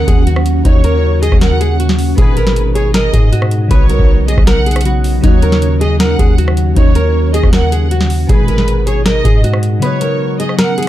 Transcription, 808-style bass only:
0, 0, Header, 1, 2, 480
1, 0, Start_track
1, 0, Key_signature, -6, "minor"
1, 0, Tempo, 382166
1, 818, Time_signature, 4, 2, 24, 8
1, 13674, End_track
2, 0, Start_track
2, 0, Title_t, "808-style bass"
2, 0, Program_c, 0, 38
2, 96, Note_on_c, 0, 39, 110
2, 788, Note_off_c, 0, 39, 0
2, 817, Note_on_c, 0, 39, 115
2, 1624, Note_off_c, 0, 39, 0
2, 1657, Note_on_c, 0, 39, 102
2, 2694, Note_off_c, 0, 39, 0
2, 2737, Note_on_c, 0, 32, 110
2, 3889, Note_off_c, 0, 32, 0
2, 3935, Note_on_c, 0, 44, 109
2, 4628, Note_off_c, 0, 44, 0
2, 4657, Note_on_c, 0, 35, 113
2, 5003, Note_off_c, 0, 35, 0
2, 5017, Note_on_c, 0, 35, 105
2, 5478, Note_off_c, 0, 35, 0
2, 5497, Note_on_c, 0, 35, 107
2, 6534, Note_off_c, 0, 35, 0
2, 6577, Note_on_c, 0, 39, 113
2, 7729, Note_off_c, 0, 39, 0
2, 7776, Note_on_c, 0, 39, 114
2, 8468, Note_off_c, 0, 39, 0
2, 8497, Note_on_c, 0, 39, 112
2, 9304, Note_off_c, 0, 39, 0
2, 9337, Note_on_c, 0, 39, 105
2, 10374, Note_off_c, 0, 39, 0
2, 10417, Note_on_c, 0, 32, 111
2, 11569, Note_off_c, 0, 32, 0
2, 11616, Note_on_c, 0, 44, 108
2, 12308, Note_off_c, 0, 44, 0
2, 13674, End_track
0, 0, End_of_file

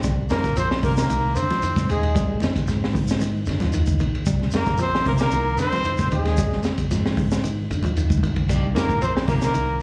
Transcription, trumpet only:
0, 0, Header, 1, 2, 480
1, 0, Start_track
1, 0, Key_signature, -3, "minor"
1, 0, Tempo, 528169
1, 36, Time_signature, 4, 2, 24, 8
1, 8926, End_track
2, 0, Start_track
2, 0, Title_t, "Trumpet"
2, 0, Program_c, 0, 56
2, 282, Note_on_c, 0, 70, 103
2, 503, Note_off_c, 0, 70, 0
2, 535, Note_on_c, 0, 72, 107
2, 639, Note_off_c, 0, 72, 0
2, 762, Note_on_c, 0, 70, 107
2, 872, Note_off_c, 0, 70, 0
2, 877, Note_on_c, 0, 70, 94
2, 1228, Note_on_c, 0, 72, 110
2, 1241, Note_off_c, 0, 70, 0
2, 1712, Note_off_c, 0, 72, 0
2, 1724, Note_on_c, 0, 68, 83
2, 2167, Note_off_c, 0, 68, 0
2, 4140, Note_on_c, 0, 70, 102
2, 4352, Note_off_c, 0, 70, 0
2, 4378, Note_on_c, 0, 72, 112
2, 4592, Note_off_c, 0, 72, 0
2, 4609, Note_on_c, 0, 70, 102
2, 4662, Note_off_c, 0, 70, 0
2, 4741, Note_on_c, 0, 70, 105
2, 5063, Note_off_c, 0, 70, 0
2, 5095, Note_on_c, 0, 72, 123
2, 5533, Note_off_c, 0, 72, 0
2, 5576, Note_on_c, 0, 68, 93
2, 6014, Note_off_c, 0, 68, 0
2, 7966, Note_on_c, 0, 70, 102
2, 8186, Note_off_c, 0, 70, 0
2, 8208, Note_on_c, 0, 72, 94
2, 8314, Note_off_c, 0, 72, 0
2, 8441, Note_on_c, 0, 70, 95
2, 8496, Note_off_c, 0, 70, 0
2, 8577, Note_on_c, 0, 70, 101
2, 8903, Note_off_c, 0, 70, 0
2, 8926, End_track
0, 0, End_of_file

